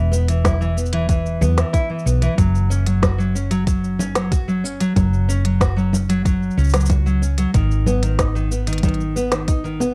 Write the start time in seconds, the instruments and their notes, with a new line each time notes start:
Already playing: fingered electric bass E1, nylon-string guitar E3
0.12 nylon-string guitar B3, cabasa
0.28 nylon-string guitar E3, closed hi-hat, cabasa
0.44 nylon-string guitar E4, kick, snare, closed hi-hat, low conga, cabasa
0.61 nylon-string guitar E3, cabasa
0.77 nylon-string guitar B3, cabasa
0.86 cabasa
0.93 nylon-string guitar E3, closed hi-hat
1.09 nylon-string guitar E3, kick, closed hi-hat, cabasa
1.26 cabasa
1.41 fingered electric bass E2, nylon-string guitar B3, low conga, cabasa
1.57 nylon-string guitar E3, snare, closed hi-hat, cabasa
1.73 nylon-string guitar E4, kick, closed hi-hat, cabasa
1.90 nylon-string guitar E3
1.99 cabasa
2.06 fingered electric bass B1, nylon-string guitar B3, cabasa
2.22 nylon-string guitar E3, closed hi-hat, cabasa
2.38 fingered electric bass F#1, nylon-string guitar F#3, kick, closed hi-hat, cabasa
2.55 cabasa
2.70 nylon-string guitar C#4, cabasa
2.86 nylon-string guitar F#3, closed hi-hat, cabasa
3.02 nylon-string guitar F#4, kick, snare, closed hi-hat, low conga, cabasa
3.18 nylon-string guitar F#3, cabasa
3.35 nylon-string guitar C#4, cabasa
3.51 nylon-string guitar F#3, closed hi-hat, cabasa
3.67 nylon-string guitar F#3, kick, closed hi-hat, cabasa
3.84 cabasa
3.99 nylon-string guitar C#4, low conga, cabasa
4.15 nylon-string guitar F#3, snare, closed hi-hat, cabasa
4.32 nylon-string guitar F#4, kick, closed hi-hat, cabasa
4.48 nylon-string guitar F#3, cabasa
4.64 nylon-string guitar C#4, cabasa
4.80 nylon-string guitar F#3, closed hi-hat, cabasa
4.96 fingered electric bass F#1, nylon-string guitar F#3, kick, closed hi-hat, low conga, cabasa
5.14 cabasa
5.29 nylon-string guitar C#4, cabasa
5.45 nylon-string guitar F#3, closed hi-hat
5.61 nylon-string guitar F#4, kick, snare, closed hi-hat, cabasa
5.77 nylon-string guitar F#3, cabasa
5.93 nylon-string guitar C#4, low conga, cabasa
6.09 nylon-string guitar F#3, closed hi-hat, cabasa
6.25 nylon-string guitar F#3, kick, closed hi-hat, cabasa
6.43 cabasa
6.51 cabasa
6.57 fingered electric bass C#2, nylon-string guitar C#4, cabasa
6.64 cabasa
6.67 cabasa
6.69 cabasa
6.74 nylon-string guitar F#3, snare, closed hi-hat, cabasa
6.80 cabasa
6.85 cabasa
6.90 nylon-string guitar F#4, kick, closed hi-hat, low conga, cabasa
7.06 nylon-string guitar F#3, cabasa
7.22 nylon-string guitar C#4, cabasa
7.38 nylon-string guitar F#3, closed hi-hat, cabasa
7.54 fingered electric bass G#1, nylon-string guitar D#3, kick, closed hi-hat, cabasa
7.71 cabasa
7.86 nylon-string guitar B3, low conga, cabasa
8.03 nylon-string guitar D#3, closed hi-hat, cabasa
8.19 nylon-string guitar D#4, kick, snare, closed hi-hat, cabasa
8.35 nylon-string guitar D#3, cabasa
8.51 nylon-string guitar B3, cabasa
8.67 nylon-string guitar D#3, closed hi-hat, cabasa
8.73 closed hi-hat
8.78 closed hi-hat
8.83 nylon-string guitar D#3, kick, closed hi-hat, low conga, cabasa
8.89 closed hi-hat
8.94 closed hi-hat
9.01 cabasa
9.16 nylon-string guitar B3, cabasa
9.32 nylon-string guitar D#3, snare, closed hi-hat, cabasa
9.48 nylon-string guitar D#4, kick, closed hi-hat, cabasa
9.64 nylon-string guitar D#3, cabasa
9.80 nylon-string guitar B3, low conga, cabasa